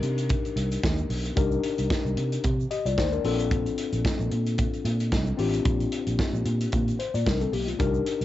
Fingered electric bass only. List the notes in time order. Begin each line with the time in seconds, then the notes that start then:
0.03 C3
0.56 C2
0.83 D#2
1.09 B1
1.37 C2
1.78 C2
2.05 C2
2.17 C3
2.44 C3
2.85 C2
2.98 D#2
3.24 A#1
3.93 A#1
4.19 A#1
4.31 A#2
4.85 A#2
5.12 C2
5.38 A1
5.65 A#1
6.07 A#1
6.33 A#1
6.45 A#2
6.73 A#2
7.14 A#2
7.26 C2
7.53 B1
7.80 C2
8.21 C2